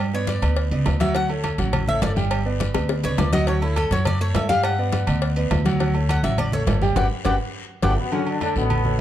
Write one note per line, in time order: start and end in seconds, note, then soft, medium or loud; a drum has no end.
0.00 0.37 G2 medium
0.13 0.37 B3 medium
0.13 0.37 B4 medium
0.13 0.28 C#5 medium
0.13 0.37 D5 medium
0.13 high conga soft
0.27 0.42 D5 medium
0.27 cowbell medium
0.27 high conga medium
0.27 low timbale medium
0.27 low agogo medium
0.27 short guiro medium
0.42 0.69 D2 medium
0.42 0.66 B3 medium
0.42 0.66 B4 medium
0.42 0.66 D5 medium
0.42 cowbell medium
0.42 high conga soft
0.42 low agogo loud
0.42 short guiro medium
0.56 cowbell loud
0.56 high conga soft
0.56 long guiro medium
0.71 0.85 C#2 medium
0.71 0.95 B3 medium
0.71 0.96 B4 medium
0.71 0.96 D5 medium
0.71 high conga soft
0.71 low agogo medium
0.86 1.53 D2 medium
0.86 cowbell medium
0.86 high conga medium
0.86 low timbale medium
0.86 low agogo loud
0.86 short guiro medium
1.00 1.12 F#3 loud
1.00 1.13 F#4 loud
1.00 1.15 E5 loud
1.00 1.13 F#5 loud
1.00 cowbell medium
1.00 high conga medium
1.00 short guiro medium
1.15 1.27 F#3 loud
1.15 1.27 F#4 loud
1.15 1.29 F#5 loud
1.15 1.27 F#5 medium
1.15 cowbell loud
1.15 low agogo medium
1.15 long guiro medium
1.29 1.53 A3 medium
1.29 1.54 A4 medium
1.29 1.54 C#5 medium
1.29 high conga soft
1.29 low agogo medium
1.44 cowbell medium
1.44 high conga medium
1.44 low timbale medium
1.44 low agogo loud
1.44 short guiro medium
1.58 1.99 A1 loud
1.58 1.82 F#3 medium
1.58 1.83 F#4 medium
1.58 1.83 F#5 medium
1.58 cowbell medium
1.58 high conga soft
1.58 short guiro medium
1.73 cowbell loud
1.73 high conga soft
1.73 low conga loud
1.73 low agogo loud
1.73 long guiro medium
1.87 1.99 A3 medium
1.87 2.00 A4 medium
1.87 2.00 C#5 medium
1.87 2.02 E5 loud
1.87 high conga soft
1.87 low conga medium
2.02 2.69 G1 medium
2.02 2.14 A3 medium
2.02 2.14 A4 medium
2.02 2.14 C#5 medium
2.02 2.11 D5 loud
2.02 cowbell medium
2.02 high conga medium
2.02 low timbale medium
2.02 low agogo medium
2.02 short guiro medium
2.16 2.40 G3 loud
2.16 2.41 G4 loud
2.16 2.41 G5 loud
2.16 high conga medium
2.16 short guiro medium
2.31 cowbell loud
2.31 high conga soft
2.31 low agogo loud
2.31 long guiro medium
2.45 2.69 B3 medium
2.45 2.70 B4 medium
2.45 2.70 D5 medium
2.45 high conga soft
2.60 cowbell medium
2.60 high conga loud
2.60 low timbale medium
2.60 low agogo medium
2.60 short guiro medium
2.74 3.02 D2 loud
2.74 2.98 B3 medium
2.74 2.99 B4 medium
2.74 2.99 D5 medium
2.74 cowbell medium
2.74 high bongo loud
2.74 high conga soft
2.74 low agogo loud
2.74 short guiro medium
2.89 cowbell loud
2.89 high bongo loud
2.89 high conga soft
2.89 long guiro medium
3.03 3.17 C#2 medium
3.03 3.28 B3 medium
3.03 3.28 B4 medium
3.03 3.18 C#5 loud
3.03 3.28 D5 medium
3.03 low bongo medium
3.03 low agogo medium
3.18 3.85 D2 medium
3.18 3.33 D5 medium
3.18 cowbell medium
3.18 low bongo loud
3.18 high conga medium
3.18 low timbale medium
3.18 low agogo loud
3.18 short guiro medium
3.33 3.45 F#3 loud
3.33 3.45 F#4 loud
3.33 3.47 D#5 loud
3.33 3.45 F#5 loud
3.33 cowbell medium
3.33 low bongo medium
3.33 high conga medium
3.33 short guiro medium
3.47 3.59 F#3 medium
3.47 3.60 F#4 medium
3.47 3.62 C#5 medium
3.47 3.60 F#5 medium
3.47 cowbell loud
3.47 low agogo medium
3.47 long guiro medium
3.62 3.86 A3 medium
3.62 3.76 E4 medium
3.62 3.86 A4 medium
3.62 3.86 C#5 medium
3.62 low agogo medium
3.76 3.91 A4 medium
3.76 cowbell medium
3.76 high conga medium
3.76 low timbale medium
3.76 low agogo loud
3.76 short guiro medium
3.91 4.31 F#2 medium
3.91 4.15 F#3 medium
3.91 4.15 F#4 medium
3.91 4.06 C#5 medium
3.91 4.15 F#5 medium
3.91 cowbell medium
3.91 high conga soft
3.91 short guiro medium
4.05 4.20 D5 loud
4.05 cowbell loud
4.05 high conga soft
4.05 low conga medium
4.05 low agogo loud
4.05 long guiro medium
4.21 4.32 A3 medium
4.21 4.32 A4 medium
4.21 4.33 C#5 medium
4.21 4.35 C#5 loud
4.21 high conga soft
4.34 5.02 G2 medium
4.34 4.47 A3 medium
4.34 4.47 A4 medium
4.34 4.47 C#5 medium
4.34 4.49 E5 medium
4.34 cowbell medium
4.34 high conga medium
4.34 low timbale medium
4.34 low agogo medium
4.34 short guiro medium
4.49 4.73 G3 loud
4.49 4.73 G4 loud
4.49 4.63 F5 loud
4.49 4.73 G5 loud
4.49 high conga medium
4.49 short guiro medium
4.63 5.47 F#5 medium
4.63 cowbell loud
4.63 high conga soft
4.63 low agogo loud
4.63 long guiro medium
4.78 5.02 B3 medium
4.78 5.02 B4 medium
4.78 5.02 D5 medium
4.78 high conga soft
4.92 cowbell medium
4.92 high conga medium
4.92 low timbale medium
4.92 low agogo medium
4.92 short guiro medium
5.07 5.48 D2 loud
5.07 5.31 B3 medium
5.07 5.31 B4 medium
5.07 5.32 D5 medium
5.07 cowbell medium
5.07 high conga soft
5.07 low agogo loud
5.07 short guiro medium
5.22 cowbell loud
5.22 high conga soft
5.22 long guiro medium
5.36 5.60 B3 medium
5.36 5.60 B4 medium
5.36 5.60 D5 medium
5.36 high conga soft
5.36 low agogo medium
5.51 6.18 D2 loud
5.51 cowbell medium
5.51 high conga medium
5.51 low timbale medium
5.51 low agogo loud
5.51 short guiro medium
5.65 5.77 F#3 loud
5.65 5.77 F#4 loud
5.65 5.78 F#5 loud
5.65 cowbell medium
5.65 high conga medium
5.65 short guiro medium
5.80 5.92 F#3 medium
5.80 5.92 F#4 loud
5.80 5.92 F#5 loud
5.80 cowbell loud
5.80 high conga soft
5.80 low agogo medium
5.80 long guiro medium
5.94 6.18 A3 medium
5.94 6.18 A4 medium
5.94 6.19 C#5 medium
5.94 high conga soft
5.94 low agogo medium
6.09 6.23 F#5 medium
6.09 cowbell medium
6.09 high conga medium
6.09 low timbale medium
6.09 low agogo loud
6.09 short guiro medium
6.23 6.64 A1 medium
6.23 6.47 F#3 medium
6.23 6.48 F#4 medium
6.23 6.38 E5 medium
6.23 6.48 F#5 medium
6.23 cowbell medium
6.23 short guiro medium
6.38 6.53 D5 medium
6.38 cowbell loud
6.38 high conga soft
6.38 low conga medium
6.38 low agogo loud
6.38 long guiro medium
6.52 6.64 A3 medium
6.52 6.65 A4 medium
6.52 6.65 C#5 medium
6.52 6.62 C#5 loud
6.52 high conga soft
6.52 low conga medium
6.67 6.94 G1 loud
6.67 6.79 A3 medium
6.67 6.79 A4 medium
6.67 6.80 C#5 medium
6.67 cowbell medium
6.67 high conga medium
6.67 low timbale medium
6.67 low agogo medium
6.67 short guiro medium
6.81 6.94 G3 loud
6.81 6.94 G4 loud
6.81 6.94 G5 loud
6.81 high conga medium
6.81 short guiro medium
6.96 7.07 G1 medium
6.96 7.06 F#4 loud
6.96 7.06 G4 loud
6.96 7.06 B4 loud
6.96 7.06 D5 medium
6.96 7.06 F#5 medium
6.96 7.06 G5 medium
6.96 cowbell loud
6.96 high conga loud
6.96 high timbale loud
6.96 long guiro medium
7.25 7.36 G1 loud
7.25 7.35 F#4 loud
7.25 7.35 G4 loud
7.25 7.35 B4 loud
7.25 7.35 D5 loud
7.25 7.35 F#5 loud
7.25 7.35 G5 medium
7.25 cowbell loud
7.25 high conga loud
7.25 high timbale loud
7.25 long guiro medium
7.82 7.94 G1 loud
7.82 7.98 A2 medium
7.82 7.98 A3 loud
7.82 7.93 F#4 loud
7.82 7.93 G4 loud
7.82 7.93 B4 loud
7.82 7.92 D5 loud
7.82 7.92 F#5 medium
7.82 7.92 G5 medium
7.82 cowbell loud
7.82 high conga loud
7.82 high timbale loud
7.82 long guiro loud
7.99 8.13 B2 medium
7.99 8.13 B3 loud
8.12 8.26 C#3 medium
8.12 8.65 D3 medium
8.12 8.36 F#3 medium
8.12 8.27 C#4 loud
8.12 8.36 F#4 medium
8.12 8.36 F#5 loud
8.12 high conga soft
8.12 low agogo medium
8.12 long guiro medium
8.26 8.41 D3 medium
8.26 8.41 D4 medium
8.26 high conga soft
8.26 low agogo medium
8.41 8.55 D3 medium
8.41 8.53 A3 medium
8.41 8.55 D4 loud
8.41 8.53 A4 medium
8.41 8.53 C#5 medium
8.41 high conga medium
8.41 low timbale medium
8.41 low agogo loud
8.41 short guiro medium
8.55 8.96 A1 medium
8.55 8.97 B2 medium
8.55 8.80 A3 medium
8.55 8.97 B3 loud
8.55 8.80 A4 medium
8.55 8.80 C#5 medium
8.55 high conga soft
8.55 short guiro medium
8.70 high conga soft
8.70 low conga medium
8.70 low agogo loud
8.70 long guiro medium
8.85 9.01 A3 medium
8.85 9.01 A4 medium
8.85 9.01 C#5 medium
8.85 high conga soft
8.85 low conga medium